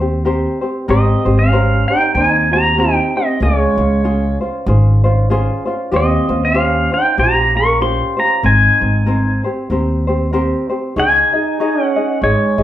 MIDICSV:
0, 0, Header, 1, 5, 480
1, 0, Start_track
1, 0, Key_signature, -4, "major"
1, 0, Tempo, 628931
1, 682, Time_signature, 4, 2, 24, 8
1, 9640, End_track
2, 0, Start_track
2, 0, Title_t, "Pedal steel guitar"
2, 0, Program_c, 0, 26
2, 690, Note_on_c, 0, 75, 79
2, 1059, Note_on_c, 0, 77, 86
2, 1078, Note_off_c, 0, 75, 0
2, 1415, Note_off_c, 0, 77, 0
2, 1435, Note_on_c, 0, 79, 90
2, 1636, Note_off_c, 0, 79, 0
2, 1639, Note_on_c, 0, 80, 86
2, 1930, Note_off_c, 0, 80, 0
2, 1932, Note_on_c, 0, 82, 84
2, 2112, Note_off_c, 0, 82, 0
2, 2136, Note_on_c, 0, 79, 101
2, 2418, Note_off_c, 0, 79, 0
2, 2420, Note_on_c, 0, 75, 87
2, 2596, Note_off_c, 0, 75, 0
2, 2616, Note_on_c, 0, 73, 84
2, 3339, Note_off_c, 0, 73, 0
2, 4551, Note_on_c, 0, 75, 93
2, 4921, Note_on_c, 0, 77, 89
2, 4928, Note_off_c, 0, 75, 0
2, 5293, Note_off_c, 0, 77, 0
2, 5296, Note_on_c, 0, 79, 84
2, 5474, Note_off_c, 0, 79, 0
2, 5491, Note_on_c, 0, 82, 100
2, 5749, Note_off_c, 0, 82, 0
2, 5776, Note_on_c, 0, 85, 83
2, 5966, Note_off_c, 0, 85, 0
2, 5969, Note_on_c, 0, 84, 99
2, 6228, Note_off_c, 0, 84, 0
2, 6255, Note_on_c, 0, 82, 85
2, 6454, Note_off_c, 0, 82, 0
2, 6455, Note_on_c, 0, 80, 89
2, 7180, Note_off_c, 0, 80, 0
2, 8391, Note_on_c, 0, 80, 102
2, 9055, Note_off_c, 0, 80, 0
2, 9055, Note_on_c, 0, 78, 102
2, 9338, Note_on_c, 0, 73, 79
2, 9368, Note_off_c, 0, 78, 0
2, 9640, Note_off_c, 0, 73, 0
2, 9640, End_track
3, 0, Start_track
3, 0, Title_t, "Ukulele"
3, 0, Program_c, 1, 24
3, 0, Note_on_c, 1, 72, 48
3, 9, Note_on_c, 1, 67, 55
3, 14, Note_on_c, 1, 60, 43
3, 185, Note_off_c, 1, 67, 0
3, 186, Note_off_c, 1, 60, 0
3, 189, Note_on_c, 1, 70, 72
3, 193, Note_off_c, 1, 72, 0
3, 194, Note_on_c, 1, 67, 83
3, 196, Note_on_c, 1, 60, 74
3, 202, Note_on_c, 1, 72, 71
3, 458, Note_off_c, 1, 72, 0
3, 464, Note_off_c, 1, 67, 0
3, 467, Note_on_c, 1, 72, 47
3, 472, Note_off_c, 1, 60, 0
3, 473, Note_on_c, 1, 67, 48
3, 478, Note_off_c, 1, 70, 0
3, 482, Note_on_c, 1, 60, 44
3, 668, Note_off_c, 1, 60, 0
3, 672, Note_off_c, 1, 67, 0
3, 672, Note_on_c, 1, 70, 88
3, 674, Note_off_c, 1, 72, 0
3, 677, Note_on_c, 1, 60, 85
3, 681, Note_on_c, 1, 67, 85
3, 682, Note_on_c, 1, 72, 91
3, 944, Note_off_c, 1, 72, 0
3, 952, Note_off_c, 1, 67, 0
3, 953, Note_on_c, 1, 72, 52
3, 959, Note_off_c, 1, 70, 0
3, 961, Note_off_c, 1, 60, 0
3, 962, Note_on_c, 1, 67, 50
3, 969, Note_on_c, 1, 60, 47
3, 1157, Note_off_c, 1, 72, 0
3, 1158, Note_off_c, 1, 67, 0
3, 1159, Note_on_c, 1, 70, 73
3, 1165, Note_off_c, 1, 60, 0
3, 1167, Note_on_c, 1, 67, 68
3, 1167, Note_on_c, 1, 72, 78
3, 1435, Note_off_c, 1, 72, 0
3, 1441, Note_off_c, 1, 67, 0
3, 1442, Note_off_c, 1, 70, 0
3, 1445, Note_on_c, 1, 72, 47
3, 1450, Note_on_c, 1, 67, 39
3, 1459, Note_on_c, 1, 60, 39
3, 1636, Note_off_c, 1, 60, 0
3, 1641, Note_on_c, 1, 70, 59
3, 1642, Note_off_c, 1, 72, 0
3, 1645, Note_off_c, 1, 67, 0
3, 1645, Note_on_c, 1, 60, 50
3, 1654, Note_on_c, 1, 72, 61
3, 1918, Note_off_c, 1, 72, 0
3, 1923, Note_off_c, 1, 70, 0
3, 1925, Note_off_c, 1, 60, 0
3, 1928, Note_on_c, 1, 72, 45
3, 1938, Note_on_c, 1, 67, 49
3, 1945, Note_on_c, 1, 60, 41
3, 2113, Note_off_c, 1, 60, 0
3, 2118, Note_off_c, 1, 67, 0
3, 2119, Note_off_c, 1, 72, 0
3, 2119, Note_on_c, 1, 70, 70
3, 2122, Note_on_c, 1, 60, 71
3, 2127, Note_on_c, 1, 67, 69
3, 2128, Note_on_c, 1, 72, 72
3, 2401, Note_off_c, 1, 70, 0
3, 2403, Note_off_c, 1, 60, 0
3, 2404, Note_off_c, 1, 72, 0
3, 2406, Note_off_c, 1, 67, 0
3, 2414, Note_on_c, 1, 72, 48
3, 2419, Note_on_c, 1, 67, 40
3, 2429, Note_on_c, 1, 60, 40
3, 2606, Note_off_c, 1, 72, 0
3, 2608, Note_off_c, 1, 60, 0
3, 2608, Note_off_c, 1, 67, 0
3, 2608, Note_on_c, 1, 68, 80
3, 2611, Note_on_c, 1, 61, 77
3, 2611, Note_on_c, 1, 65, 95
3, 2880, Note_off_c, 1, 65, 0
3, 2886, Note_off_c, 1, 68, 0
3, 2887, Note_off_c, 1, 61, 0
3, 2890, Note_on_c, 1, 65, 49
3, 2899, Note_on_c, 1, 61, 44
3, 3080, Note_off_c, 1, 61, 0
3, 3081, Note_off_c, 1, 65, 0
3, 3082, Note_on_c, 1, 68, 61
3, 3089, Note_on_c, 1, 61, 69
3, 3090, Note_on_c, 1, 65, 77
3, 3361, Note_off_c, 1, 65, 0
3, 3363, Note_off_c, 1, 68, 0
3, 3363, Note_on_c, 1, 72, 55
3, 3366, Note_off_c, 1, 61, 0
3, 3370, Note_on_c, 1, 65, 47
3, 3378, Note_on_c, 1, 61, 45
3, 3560, Note_off_c, 1, 61, 0
3, 3561, Note_off_c, 1, 72, 0
3, 3562, Note_off_c, 1, 65, 0
3, 3564, Note_on_c, 1, 68, 64
3, 3569, Note_on_c, 1, 61, 67
3, 3571, Note_on_c, 1, 65, 60
3, 3578, Note_on_c, 1, 72, 65
3, 3836, Note_off_c, 1, 72, 0
3, 3844, Note_off_c, 1, 68, 0
3, 3845, Note_off_c, 1, 65, 0
3, 3846, Note_off_c, 1, 61, 0
3, 3846, Note_on_c, 1, 72, 70
3, 3854, Note_on_c, 1, 65, 58
3, 3860, Note_on_c, 1, 61, 48
3, 4042, Note_off_c, 1, 72, 0
3, 4043, Note_off_c, 1, 61, 0
3, 4043, Note_off_c, 1, 65, 0
3, 4046, Note_on_c, 1, 68, 80
3, 4052, Note_on_c, 1, 61, 81
3, 4052, Note_on_c, 1, 65, 85
3, 4057, Note_on_c, 1, 72, 102
3, 4307, Note_off_c, 1, 72, 0
3, 4316, Note_on_c, 1, 72, 54
3, 4318, Note_off_c, 1, 65, 0
3, 4324, Note_off_c, 1, 61, 0
3, 4325, Note_off_c, 1, 68, 0
3, 4327, Note_on_c, 1, 65, 55
3, 4333, Note_on_c, 1, 61, 49
3, 4515, Note_on_c, 1, 67, 78
3, 4517, Note_off_c, 1, 65, 0
3, 4517, Note_off_c, 1, 72, 0
3, 4526, Note_off_c, 1, 61, 0
3, 4526, Note_on_c, 1, 65, 86
3, 4529, Note_on_c, 1, 72, 89
3, 4791, Note_off_c, 1, 72, 0
3, 4798, Note_off_c, 1, 65, 0
3, 4799, Note_off_c, 1, 67, 0
3, 4800, Note_on_c, 1, 72, 47
3, 4808, Note_on_c, 1, 65, 50
3, 4815, Note_on_c, 1, 61, 44
3, 4988, Note_off_c, 1, 61, 0
3, 4993, Note_off_c, 1, 65, 0
3, 4993, Note_on_c, 1, 67, 75
3, 4995, Note_off_c, 1, 72, 0
3, 4997, Note_on_c, 1, 61, 76
3, 5002, Note_on_c, 1, 65, 73
3, 5004, Note_on_c, 1, 72, 78
3, 5268, Note_off_c, 1, 72, 0
3, 5277, Note_off_c, 1, 65, 0
3, 5278, Note_on_c, 1, 72, 53
3, 5279, Note_off_c, 1, 67, 0
3, 5281, Note_off_c, 1, 61, 0
3, 5286, Note_on_c, 1, 65, 44
3, 5294, Note_on_c, 1, 61, 41
3, 5471, Note_off_c, 1, 61, 0
3, 5477, Note_off_c, 1, 65, 0
3, 5477, Note_on_c, 1, 67, 66
3, 5479, Note_off_c, 1, 72, 0
3, 5480, Note_on_c, 1, 61, 57
3, 5486, Note_on_c, 1, 65, 52
3, 5490, Note_on_c, 1, 72, 67
3, 5755, Note_off_c, 1, 65, 0
3, 5761, Note_off_c, 1, 67, 0
3, 5762, Note_off_c, 1, 61, 0
3, 5764, Note_on_c, 1, 65, 44
3, 5767, Note_off_c, 1, 72, 0
3, 5771, Note_on_c, 1, 61, 41
3, 5954, Note_off_c, 1, 61, 0
3, 5956, Note_off_c, 1, 65, 0
3, 5958, Note_on_c, 1, 67, 70
3, 5963, Note_on_c, 1, 61, 78
3, 5965, Note_on_c, 1, 65, 79
3, 5967, Note_on_c, 1, 72, 73
3, 6223, Note_off_c, 1, 72, 0
3, 6233, Note_on_c, 1, 72, 53
3, 6234, Note_off_c, 1, 65, 0
3, 6241, Note_off_c, 1, 61, 0
3, 6242, Note_off_c, 1, 67, 0
3, 6243, Note_on_c, 1, 65, 44
3, 6250, Note_on_c, 1, 61, 39
3, 6433, Note_on_c, 1, 70, 74
3, 6434, Note_off_c, 1, 72, 0
3, 6436, Note_off_c, 1, 61, 0
3, 6439, Note_on_c, 1, 60, 79
3, 6442, Note_off_c, 1, 65, 0
3, 6443, Note_on_c, 1, 72, 86
3, 6716, Note_off_c, 1, 72, 0
3, 6720, Note_off_c, 1, 70, 0
3, 6723, Note_off_c, 1, 60, 0
3, 6725, Note_on_c, 1, 72, 46
3, 6739, Note_on_c, 1, 60, 46
3, 6914, Note_off_c, 1, 60, 0
3, 6914, Note_off_c, 1, 72, 0
3, 6917, Note_on_c, 1, 70, 78
3, 6923, Note_on_c, 1, 60, 77
3, 6931, Note_on_c, 1, 72, 77
3, 7197, Note_off_c, 1, 72, 0
3, 7202, Note_off_c, 1, 70, 0
3, 7205, Note_off_c, 1, 60, 0
3, 7206, Note_on_c, 1, 72, 49
3, 7214, Note_on_c, 1, 67, 54
3, 7221, Note_on_c, 1, 60, 46
3, 7400, Note_off_c, 1, 60, 0
3, 7403, Note_off_c, 1, 67, 0
3, 7404, Note_off_c, 1, 72, 0
3, 7405, Note_on_c, 1, 70, 65
3, 7409, Note_on_c, 1, 60, 63
3, 7413, Note_on_c, 1, 67, 68
3, 7419, Note_on_c, 1, 72, 67
3, 7677, Note_off_c, 1, 72, 0
3, 7685, Note_off_c, 1, 67, 0
3, 7686, Note_off_c, 1, 70, 0
3, 7687, Note_on_c, 1, 72, 61
3, 7688, Note_off_c, 1, 60, 0
3, 7695, Note_on_c, 1, 67, 49
3, 7702, Note_on_c, 1, 60, 52
3, 7877, Note_off_c, 1, 67, 0
3, 7878, Note_off_c, 1, 60, 0
3, 7880, Note_off_c, 1, 72, 0
3, 7881, Note_on_c, 1, 70, 81
3, 7887, Note_on_c, 1, 60, 77
3, 7887, Note_on_c, 1, 67, 72
3, 7890, Note_on_c, 1, 72, 90
3, 8153, Note_off_c, 1, 72, 0
3, 8160, Note_off_c, 1, 67, 0
3, 8162, Note_on_c, 1, 72, 57
3, 8165, Note_off_c, 1, 60, 0
3, 8165, Note_off_c, 1, 70, 0
3, 8169, Note_on_c, 1, 67, 43
3, 8174, Note_on_c, 1, 60, 42
3, 8362, Note_off_c, 1, 72, 0
3, 8366, Note_off_c, 1, 60, 0
3, 8366, Note_off_c, 1, 67, 0
3, 8367, Note_on_c, 1, 73, 74
3, 8369, Note_on_c, 1, 63, 76
3, 8373, Note_on_c, 1, 68, 80
3, 8379, Note_on_c, 1, 75, 80
3, 8640, Note_off_c, 1, 75, 0
3, 8648, Note_off_c, 1, 73, 0
3, 8649, Note_off_c, 1, 63, 0
3, 8649, Note_on_c, 1, 75, 51
3, 8651, Note_off_c, 1, 68, 0
3, 8659, Note_on_c, 1, 68, 45
3, 8664, Note_on_c, 1, 63, 37
3, 8845, Note_off_c, 1, 63, 0
3, 8846, Note_off_c, 1, 75, 0
3, 8847, Note_off_c, 1, 68, 0
3, 8851, Note_on_c, 1, 73, 65
3, 8855, Note_on_c, 1, 63, 74
3, 8856, Note_on_c, 1, 68, 76
3, 8860, Note_on_c, 1, 75, 82
3, 9119, Note_off_c, 1, 75, 0
3, 9126, Note_off_c, 1, 68, 0
3, 9128, Note_on_c, 1, 75, 55
3, 9130, Note_off_c, 1, 73, 0
3, 9132, Note_off_c, 1, 63, 0
3, 9135, Note_on_c, 1, 68, 46
3, 9143, Note_on_c, 1, 63, 39
3, 9320, Note_off_c, 1, 63, 0
3, 9321, Note_on_c, 1, 73, 55
3, 9324, Note_off_c, 1, 68, 0
3, 9326, Note_off_c, 1, 75, 0
3, 9330, Note_on_c, 1, 63, 55
3, 9333, Note_on_c, 1, 68, 64
3, 9336, Note_on_c, 1, 75, 58
3, 9592, Note_off_c, 1, 75, 0
3, 9596, Note_off_c, 1, 68, 0
3, 9601, Note_on_c, 1, 75, 46
3, 9605, Note_off_c, 1, 63, 0
3, 9605, Note_off_c, 1, 73, 0
3, 9605, Note_on_c, 1, 68, 47
3, 9614, Note_on_c, 1, 63, 39
3, 9640, Note_off_c, 1, 63, 0
3, 9640, Note_off_c, 1, 68, 0
3, 9640, Note_off_c, 1, 75, 0
3, 9640, End_track
4, 0, Start_track
4, 0, Title_t, "Flugelhorn"
4, 0, Program_c, 2, 56
4, 677, Note_on_c, 2, 60, 72
4, 1034, Note_off_c, 2, 60, 0
4, 1068, Note_on_c, 2, 61, 72
4, 1420, Note_off_c, 2, 61, 0
4, 1442, Note_on_c, 2, 63, 81
4, 1627, Note_off_c, 2, 63, 0
4, 1647, Note_on_c, 2, 63, 86
4, 1906, Note_off_c, 2, 63, 0
4, 1917, Note_on_c, 2, 67, 83
4, 2104, Note_off_c, 2, 67, 0
4, 2115, Note_on_c, 2, 63, 88
4, 2380, Note_off_c, 2, 63, 0
4, 2404, Note_on_c, 2, 60, 75
4, 2588, Note_off_c, 2, 60, 0
4, 2603, Note_on_c, 2, 56, 86
4, 3333, Note_off_c, 2, 56, 0
4, 4542, Note_on_c, 2, 60, 78
4, 4887, Note_off_c, 2, 60, 0
4, 4908, Note_on_c, 2, 61, 74
4, 5259, Note_off_c, 2, 61, 0
4, 5298, Note_on_c, 2, 63, 70
4, 5475, Note_off_c, 2, 63, 0
4, 5493, Note_on_c, 2, 67, 83
4, 5750, Note_off_c, 2, 67, 0
4, 5774, Note_on_c, 2, 70, 90
4, 5954, Note_off_c, 2, 70, 0
4, 5972, Note_on_c, 2, 67, 90
4, 6229, Note_off_c, 2, 67, 0
4, 6249, Note_on_c, 2, 67, 75
4, 6431, Note_off_c, 2, 67, 0
4, 6445, Note_on_c, 2, 63, 81
4, 7176, Note_off_c, 2, 63, 0
4, 8386, Note_on_c, 2, 63, 106
4, 9011, Note_off_c, 2, 63, 0
4, 9011, Note_on_c, 2, 61, 106
4, 9306, Note_off_c, 2, 61, 0
4, 9333, Note_on_c, 2, 56, 80
4, 9640, Note_off_c, 2, 56, 0
4, 9640, End_track
5, 0, Start_track
5, 0, Title_t, "Upright bass"
5, 0, Program_c, 3, 32
5, 0, Note_on_c, 3, 39, 96
5, 342, Note_off_c, 3, 39, 0
5, 676, Note_on_c, 3, 32, 97
5, 861, Note_off_c, 3, 32, 0
5, 960, Note_on_c, 3, 32, 91
5, 1402, Note_off_c, 3, 32, 0
5, 1639, Note_on_c, 3, 39, 103
5, 2263, Note_off_c, 3, 39, 0
5, 2596, Note_on_c, 3, 37, 92
5, 2781, Note_off_c, 3, 37, 0
5, 2882, Note_on_c, 3, 37, 97
5, 3323, Note_off_c, 3, 37, 0
5, 3560, Note_on_c, 3, 32, 105
5, 4184, Note_off_c, 3, 32, 0
5, 4521, Note_on_c, 3, 39, 92
5, 4704, Note_off_c, 3, 39, 0
5, 4800, Note_on_c, 3, 39, 93
5, 5242, Note_off_c, 3, 39, 0
5, 5478, Note_on_c, 3, 34, 94
5, 6103, Note_off_c, 3, 34, 0
5, 6436, Note_on_c, 3, 32, 101
5, 6621, Note_off_c, 3, 32, 0
5, 6727, Note_on_c, 3, 32, 93
5, 7167, Note_off_c, 3, 32, 0
5, 7402, Note_on_c, 3, 39, 88
5, 8027, Note_off_c, 3, 39, 0
5, 8366, Note_on_c, 3, 37, 89
5, 8549, Note_off_c, 3, 37, 0
5, 9324, Note_on_c, 3, 32, 87
5, 9416, Note_off_c, 3, 32, 0
5, 9601, Note_on_c, 3, 32, 97
5, 9640, Note_off_c, 3, 32, 0
5, 9640, End_track
0, 0, End_of_file